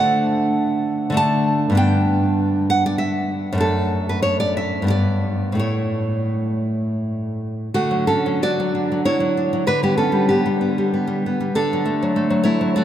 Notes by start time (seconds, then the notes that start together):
Already playing: D3 A3 D4 F#5
1.10 D3 A3
1.14 D4 A5
1.70 G2 B3
1.75 D4 G5
2.70 F#5
2.86 D5
2.98 E5
3.52 F#2 A3
3.58 D4 A4
4.09 B4
4.22 C#5
4.40 D5
4.57 E5
4.82 G2 B3
4.87 E4 D5
5.52 A2 A3
5.57 E4 C#5
7.74 D3 A3 F#4
7.91 F#3
8.07 C#4 D4 A4
8.26 F#3
8.42 D4 F#4 D5
8.60 F#3
8.75 D4
8.92 F#3
9.05 D4 E4 C#5
9.20 F#3
9.37 D4
9.53 F#3
9.67 D3 D4 B4
9.83 G3 B3 G4
9.97 B3 C#4 A4
10.12 G3
10.29 B3 G4
10.46 G3
10.61 B3
10.78 G3
10.94 B3
11.07 G3
11.26 B3
11.40 G3
11.55 D3 D4 A4
11.73 F#3
11.85 A3
12.03 F#3
12.16 A3
12.30 F#3
12.43 A3 E4 C#5
12.61 F#3
12.76 A3 F#4 D5